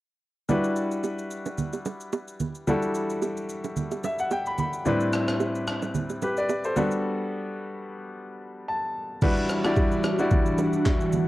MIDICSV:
0, 0, Header, 1, 4, 480
1, 0, Start_track
1, 0, Key_signature, 1, "minor"
1, 0, Tempo, 545455
1, 435, Time_signature, 4, 2, 24, 8
1, 9926, End_track
2, 0, Start_track
2, 0, Title_t, "Grand piano"
2, 0, Program_c, 0, 0
2, 430, Note_on_c, 0, 55, 70
2, 435, Note_on_c, 0, 62, 67
2, 440, Note_on_c, 0, 64, 63
2, 445, Note_on_c, 0, 66, 65
2, 450, Note_on_c, 0, 71, 77
2, 604, Control_c, 0, 64, 127
2, 2317, Note_off_c, 0, 55, 0
2, 2320, Note_off_c, 0, 62, 0
2, 2322, Note_off_c, 0, 64, 0
2, 2325, Note_off_c, 0, 66, 0
2, 2327, Note_off_c, 0, 71, 0
2, 2350, Note_on_c, 0, 55, 68
2, 2356, Note_on_c, 0, 62, 63
2, 2361, Note_on_c, 0, 64, 65
2, 2366, Note_on_c, 0, 66, 64
2, 2371, Note_on_c, 0, 69, 80
2, 3561, Note_on_c, 0, 76, 66
2, 3681, Note_off_c, 0, 76, 0
2, 3692, Note_on_c, 0, 78, 66
2, 3790, Note_off_c, 0, 78, 0
2, 3802, Note_on_c, 0, 79, 72
2, 3921, Note_off_c, 0, 79, 0
2, 3933, Note_on_c, 0, 83, 68
2, 4028, Note_off_c, 0, 83, 0
2, 4041, Note_on_c, 0, 83, 70
2, 4237, Note_off_c, 0, 55, 0
2, 4240, Note_off_c, 0, 62, 0
2, 4243, Note_off_c, 0, 64, 0
2, 4245, Note_off_c, 0, 66, 0
2, 4248, Note_off_c, 0, 69, 0
2, 4261, Note_off_c, 0, 83, 0
2, 4271, Note_on_c, 0, 45, 70
2, 4275, Note_on_c, 0, 55, 66
2, 4279, Note_on_c, 0, 60, 64
2, 4283, Note_on_c, 0, 62, 66
2, 4286, Control_c, 0, 64, 0
2, 4287, Note_on_c, 0, 64, 64
2, 4291, Note_on_c, 0, 71, 79
2, 4440, Control_c, 0, 64, 127
2, 5224, Note_off_c, 0, 71, 0
2, 5482, Note_on_c, 0, 71, 61
2, 5487, Note_on_c, 0, 67, 51
2, 5604, Note_off_c, 0, 71, 0
2, 5606, Note_off_c, 0, 67, 0
2, 5613, Note_on_c, 0, 74, 70
2, 5618, Note_on_c, 0, 71, 58
2, 5838, Note_off_c, 0, 74, 0
2, 5841, Note_off_c, 0, 71, 0
2, 5852, Note_on_c, 0, 72, 64
2, 5857, Note_on_c, 0, 69, 53
2, 5919, Note_off_c, 0, 45, 0
2, 5921, Note_off_c, 0, 55, 0
2, 5923, Note_off_c, 0, 60, 0
2, 5925, Note_off_c, 0, 62, 0
2, 5927, Note_off_c, 0, 64, 0
2, 5951, Note_on_c, 0, 55, 77
2, 5956, Note_on_c, 0, 59, 71
2, 5958, Note_off_c, 0, 69, 0
2, 5960, Note_on_c, 0, 62, 71
2, 5966, Note_on_c, 0, 66, 67
2, 5967, Control_c, 0, 64, 0
2, 5971, Note_on_c, 0, 69, 81
2, 6078, Note_off_c, 0, 72, 0
2, 6121, Control_c, 0, 64, 127
2, 7641, Note_on_c, 0, 81, 71
2, 7837, Note_off_c, 0, 55, 0
2, 7840, Note_off_c, 0, 59, 0
2, 7842, Note_off_c, 0, 62, 0
2, 7845, Note_off_c, 0, 66, 0
2, 7847, Note_off_c, 0, 69, 0
2, 8085, Note_off_c, 0, 81, 0
2, 8117, Note_on_c, 0, 55, 81
2, 8119, Note_on_c, 0, 62, 76
2, 8122, Note_on_c, 0, 64, 75
2, 8124, Control_c, 0, 64, 0
2, 8124, Note_on_c, 0, 66, 77
2, 8127, Note_on_c, 0, 71, 89
2, 8276, Control_c, 0, 64, 127
2, 8408, Note_off_c, 0, 55, 0
2, 8410, Note_off_c, 0, 62, 0
2, 8411, Note_off_c, 0, 64, 0
2, 8412, Note_off_c, 0, 66, 0
2, 8413, Note_off_c, 0, 71, 0
2, 8488, Note_on_c, 0, 55, 81
2, 8490, Note_on_c, 0, 62, 74
2, 8493, Note_on_c, 0, 64, 79
2, 8496, Note_on_c, 0, 66, 74
2, 8498, Note_on_c, 0, 74, 87
2, 8862, Note_off_c, 0, 55, 0
2, 8863, Note_off_c, 0, 62, 0
2, 8864, Note_off_c, 0, 64, 0
2, 8866, Note_off_c, 0, 66, 0
2, 8867, Note_off_c, 0, 74, 0
2, 8969, Note_on_c, 0, 55, 76
2, 8971, Note_on_c, 0, 62, 72
2, 8974, Note_on_c, 0, 64, 76
2, 8976, Note_on_c, 0, 66, 76
2, 8979, Note_on_c, 0, 74, 84
2, 9731, Note_off_c, 0, 55, 0
2, 9732, Note_off_c, 0, 62, 0
2, 9733, Note_off_c, 0, 64, 0
2, 9735, Note_off_c, 0, 66, 0
2, 9736, Note_off_c, 0, 74, 0
2, 9926, End_track
3, 0, Start_track
3, 0, Title_t, "Analog synth pad"
3, 0, Program_c, 1, 89
3, 8115, Note_on_c, 1, 52, 75
3, 8115, Note_on_c, 1, 55, 71
3, 8115, Note_on_c, 1, 66, 86
3, 8116, Note_on_c, 1, 62, 70
3, 9926, Note_off_c, 1, 52, 0
3, 9926, Note_off_c, 1, 55, 0
3, 9926, Note_off_c, 1, 62, 0
3, 9926, Note_off_c, 1, 66, 0
3, 9926, End_track
4, 0, Start_track
4, 0, Title_t, "Drums"
4, 434, Note_on_c, 9, 64, 75
4, 435, Note_on_c, 9, 82, 70
4, 522, Note_off_c, 9, 64, 0
4, 523, Note_off_c, 9, 82, 0
4, 566, Note_on_c, 9, 82, 44
4, 654, Note_off_c, 9, 82, 0
4, 673, Note_on_c, 9, 82, 81
4, 761, Note_off_c, 9, 82, 0
4, 808, Note_on_c, 9, 82, 52
4, 896, Note_off_c, 9, 82, 0
4, 913, Note_on_c, 9, 60, 66
4, 915, Note_on_c, 9, 82, 67
4, 1001, Note_off_c, 9, 60, 0
4, 1003, Note_off_c, 9, 82, 0
4, 1048, Note_on_c, 9, 82, 48
4, 1136, Note_off_c, 9, 82, 0
4, 1154, Note_on_c, 9, 82, 78
4, 1242, Note_off_c, 9, 82, 0
4, 1285, Note_on_c, 9, 61, 66
4, 1286, Note_on_c, 9, 82, 56
4, 1373, Note_off_c, 9, 61, 0
4, 1374, Note_off_c, 9, 82, 0
4, 1393, Note_on_c, 9, 64, 65
4, 1393, Note_on_c, 9, 82, 73
4, 1481, Note_off_c, 9, 64, 0
4, 1481, Note_off_c, 9, 82, 0
4, 1525, Note_on_c, 9, 60, 54
4, 1525, Note_on_c, 9, 82, 58
4, 1613, Note_off_c, 9, 60, 0
4, 1613, Note_off_c, 9, 82, 0
4, 1634, Note_on_c, 9, 61, 77
4, 1634, Note_on_c, 9, 82, 93
4, 1722, Note_off_c, 9, 61, 0
4, 1722, Note_off_c, 9, 82, 0
4, 1766, Note_on_c, 9, 82, 54
4, 1854, Note_off_c, 9, 82, 0
4, 1873, Note_on_c, 9, 60, 82
4, 1874, Note_on_c, 9, 82, 69
4, 1961, Note_off_c, 9, 60, 0
4, 1962, Note_off_c, 9, 82, 0
4, 2007, Note_on_c, 9, 82, 46
4, 2095, Note_off_c, 9, 82, 0
4, 2113, Note_on_c, 9, 64, 68
4, 2114, Note_on_c, 9, 82, 91
4, 2201, Note_off_c, 9, 64, 0
4, 2202, Note_off_c, 9, 82, 0
4, 2246, Note_on_c, 9, 82, 47
4, 2334, Note_off_c, 9, 82, 0
4, 2354, Note_on_c, 9, 64, 74
4, 2355, Note_on_c, 9, 82, 69
4, 2442, Note_off_c, 9, 64, 0
4, 2443, Note_off_c, 9, 82, 0
4, 2487, Note_on_c, 9, 82, 45
4, 2575, Note_off_c, 9, 82, 0
4, 2594, Note_on_c, 9, 82, 81
4, 2682, Note_off_c, 9, 82, 0
4, 2728, Note_on_c, 9, 82, 52
4, 2816, Note_off_c, 9, 82, 0
4, 2833, Note_on_c, 9, 60, 66
4, 2836, Note_on_c, 9, 82, 69
4, 2921, Note_off_c, 9, 60, 0
4, 2924, Note_off_c, 9, 82, 0
4, 2968, Note_on_c, 9, 82, 51
4, 3056, Note_off_c, 9, 82, 0
4, 3075, Note_on_c, 9, 82, 80
4, 3163, Note_off_c, 9, 82, 0
4, 3205, Note_on_c, 9, 61, 69
4, 3207, Note_on_c, 9, 82, 55
4, 3293, Note_off_c, 9, 61, 0
4, 3295, Note_off_c, 9, 82, 0
4, 3312, Note_on_c, 9, 64, 65
4, 3314, Note_on_c, 9, 82, 73
4, 3400, Note_off_c, 9, 64, 0
4, 3402, Note_off_c, 9, 82, 0
4, 3446, Note_on_c, 9, 60, 54
4, 3446, Note_on_c, 9, 82, 58
4, 3534, Note_off_c, 9, 60, 0
4, 3534, Note_off_c, 9, 82, 0
4, 3554, Note_on_c, 9, 61, 78
4, 3554, Note_on_c, 9, 82, 92
4, 3642, Note_off_c, 9, 61, 0
4, 3642, Note_off_c, 9, 82, 0
4, 3686, Note_on_c, 9, 82, 52
4, 3774, Note_off_c, 9, 82, 0
4, 3793, Note_on_c, 9, 60, 78
4, 3794, Note_on_c, 9, 82, 68
4, 3881, Note_off_c, 9, 60, 0
4, 3882, Note_off_c, 9, 82, 0
4, 3928, Note_on_c, 9, 82, 44
4, 4016, Note_off_c, 9, 82, 0
4, 4033, Note_on_c, 9, 64, 70
4, 4033, Note_on_c, 9, 82, 91
4, 4121, Note_off_c, 9, 64, 0
4, 4121, Note_off_c, 9, 82, 0
4, 4166, Note_on_c, 9, 82, 48
4, 4254, Note_off_c, 9, 82, 0
4, 4275, Note_on_c, 9, 64, 73
4, 4276, Note_on_c, 9, 82, 71
4, 4363, Note_off_c, 9, 64, 0
4, 4364, Note_off_c, 9, 82, 0
4, 4407, Note_on_c, 9, 82, 45
4, 4495, Note_off_c, 9, 82, 0
4, 4515, Note_on_c, 9, 82, 82
4, 4516, Note_on_c, 9, 37, 84
4, 4603, Note_off_c, 9, 82, 0
4, 4604, Note_off_c, 9, 37, 0
4, 4648, Note_on_c, 9, 37, 93
4, 4648, Note_on_c, 9, 82, 51
4, 4736, Note_off_c, 9, 37, 0
4, 4736, Note_off_c, 9, 82, 0
4, 4753, Note_on_c, 9, 60, 69
4, 4757, Note_on_c, 9, 82, 67
4, 4841, Note_off_c, 9, 60, 0
4, 4845, Note_off_c, 9, 82, 0
4, 4889, Note_on_c, 9, 82, 46
4, 4977, Note_off_c, 9, 82, 0
4, 4995, Note_on_c, 9, 37, 92
4, 4995, Note_on_c, 9, 82, 81
4, 5083, Note_off_c, 9, 37, 0
4, 5083, Note_off_c, 9, 82, 0
4, 5126, Note_on_c, 9, 61, 66
4, 5127, Note_on_c, 9, 82, 55
4, 5214, Note_off_c, 9, 61, 0
4, 5215, Note_off_c, 9, 82, 0
4, 5233, Note_on_c, 9, 64, 66
4, 5235, Note_on_c, 9, 82, 74
4, 5321, Note_off_c, 9, 64, 0
4, 5323, Note_off_c, 9, 82, 0
4, 5366, Note_on_c, 9, 60, 55
4, 5367, Note_on_c, 9, 82, 57
4, 5454, Note_off_c, 9, 60, 0
4, 5455, Note_off_c, 9, 82, 0
4, 5475, Note_on_c, 9, 61, 81
4, 5475, Note_on_c, 9, 82, 98
4, 5563, Note_off_c, 9, 61, 0
4, 5563, Note_off_c, 9, 82, 0
4, 5608, Note_on_c, 9, 82, 53
4, 5696, Note_off_c, 9, 82, 0
4, 5714, Note_on_c, 9, 60, 77
4, 5715, Note_on_c, 9, 82, 72
4, 5802, Note_off_c, 9, 60, 0
4, 5803, Note_off_c, 9, 82, 0
4, 5848, Note_on_c, 9, 82, 47
4, 5936, Note_off_c, 9, 82, 0
4, 5955, Note_on_c, 9, 64, 70
4, 5955, Note_on_c, 9, 82, 98
4, 6043, Note_off_c, 9, 64, 0
4, 6043, Note_off_c, 9, 82, 0
4, 6086, Note_on_c, 9, 82, 46
4, 6174, Note_off_c, 9, 82, 0
4, 8114, Note_on_c, 9, 64, 75
4, 8114, Note_on_c, 9, 82, 69
4, 8115, Note_on_c, 9, 36, 114
4, 8115, Note_on_c, 9, 49, 96
4, 8202, Note_off_c, 9, 64, 0
4, 8202, Note_off_c, 9, 82, 0
4, 8203, Note_off_c, 9, 36, 0
4, 8203, Note_off_c, 9, 49, 0
4, 8247, Note_on_c, 9, 82, 46
4, 8335, Note_off_c, 9, 82, 0
4, 8354, Note_on_c, 9, 82, 87
4, 8356, Note_on_c, 9, 37, 88
4, 8442, Note_off_c, 9, 82, 0
4, 8444, Note_off_c, 9, 37, 0
4, 8487, Note_on_c, 9, 37, 96
4, 8488, Note_on_c, 9, 82, 55
4, 8575, Note_off_c, 9, 37, 0
4, 8576, Note_off_c, 9, 82, 0
4, 8593, Note_on_c, 9, 36, 98
4, 8594, Note_on_c, 9, 60, 71
4, 8595, Note_on_c, 9, 82, 71
4, 8681, Note_off_c, 9, 36, 0
4, 8682, Note_off_c, 9, 60, 0
4, 8683, Note_off_c, 9, 82, 0
4, 8728, Note_on_c, 9, 82, 50
4, 8816, Note_off_c, 9, 82, 0
4, 8835, Note_on_c, 9, 37, 95
4, 8835, Note_on_c, 9, 82, 82
4, 8836, Note_on_c, 9, 60, 50
4, 8923, Note_off_c, 9, 37, 0
4, 8923, Note_off_c, 9, 82, 0
4, 8924, Note_off_c, 9, 60, 0
4, 8966, Note_on_c, 9, 61, 69
4, 8967, Note_on_c, 9, 82, 55
4, 9054, Note_off_c, 9, 61, 0
4, 9055, Note_off_c, 9, 82, 0
4, 9073, Note_on_c, 9, 64, 66
4, 9074, Note_on_c, 9, 82, 76
4, 9076, Note_on_c, 9, 36, 123
4, 9161, Note_off_c, 9, 64, 0
4, 9162, Note_off_c, 9, 82, 0
4, 9164, Note_off_c, 9, 36, 0
4, 9206, Note_on_c, 9, 82, 56
4, 9294, Note_off_c, 9, 82, 0
4, 9315, Note_on_c, 9, 61, 78
4, 9315, Note_on_c, 9, 82, 101
4, 9403, Note_off_c, 9, 61, 0
4, 9403, Note_off_c, 9, 82, 0
4, 9446, Note_on_c, 9, 82, 55
4, 9534, Note_off_c, 9, 82, 0
4, 9554, Note_on_c, 9, 60, 83
4, 9555, Note_on_c, 9, 36, 96
4, 9555, Note_on_c, 9, 39, 96
4, 9555, Note_on_c, 9, 82, 72
4, 9642, Note_off_c, 9, 60, 0
4, 9643, Note_off_c, 9, 36, 0
4, 9643, Note_off_c, 9, 39, 0
4, 9643, Note_off_c, 9, 82, 0
4, 9687, Note_on_c, 9, 82, 45
4, 9775, Note_off_c, 9, 82, 0
4, 9793, Note_on_c, 9, 82, 99
4, 9794, Note_on_c, 9, 64, 70
4, 9881, Note_off_c, 9, 82, 0
4, 9882, Note_off_c, 9, 64, 0
4, 9926, End_track
0, 0, End_of_file